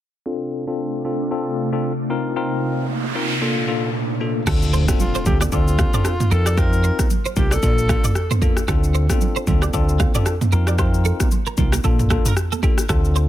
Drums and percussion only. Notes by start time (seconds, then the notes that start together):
4.47 kick, cross-stick, crash, shaker
4.62 shaker
4.73 shaker
4.88 kick, cross-stick, high conga, shaker
5.00 low conga, shaker
5.15 shaker
5.26 kick, high conga, low conga, shaker
5.41 cross-stick, high conga, shaker
5.52 kick, shaker
5.68 shaker
5.79 kick, cross-stick, high conga, shaker
5.94 mid tom, shaker
6.05 cross-stick, shaker
6.20 mid tom, high conga, shaker
6.31 shaker
6.46 cross-stick, shaker
6.58 kick, cross-stick, shaker
6.73 shaker
6.84 shaker
6.99 kick, cross-stick, high conga, shaker
7.10 low conga, shaker
7.25 shaker
7.36 kick, high conga, low conga, shaker
7.51 cross-stick, high conga, shaker
7.63 kick, shaker
7.78 shaker
7.89 kick, cross-stick, high conga, shaker
8.04 mid tom, shaker
8.15 cross-stick, shaker
8.31 mid tom, high conga, shaker
8.42 kick, shaker
8.57 cross-stick, shaker
8.68 kick, cross-stick, shaker
8.84 shaker
8.95 shaker
9.10 kick, cross-stick, high conga, shaker
9.21 low conga, shaker
9.36 shaker
9.47 kick, high conga, low conga, shaker
9.62 cross-stick, high conga, shaker
9.73 kick, shaker
9.89 shaker
10.00 kick, cross-stick, high conga, shaker
10.15 mid tom, shaker
10.26 cross-stick, shaker
10.41 mid tom, high conga, shaker
10.52 shaker
10.67 cross-stick, shaker
10.78 kick, cross-stick, shaker
10.94 shaker
11.05 shaker
11.20 kick, cross-stick, high conga, shaker
11.31 low conga, shaker
11.46 shaker
11.57 kick, high conga, low conga, shaker
11.72 cross-stick, high conga, shaker
11.84 kick, shaker
11.99 mid tom, shaker
12.10 kick, cross-stick, high conga, shaker
12.25 mid tom, shaker
12.37 cross-stick, shaker
12.52 high conga, shaker
12.63 kick, shaker
12.78 cross-stick, shaker
12.89 kick, cross-stick, shaker
13.05 shaker
13.16 shaker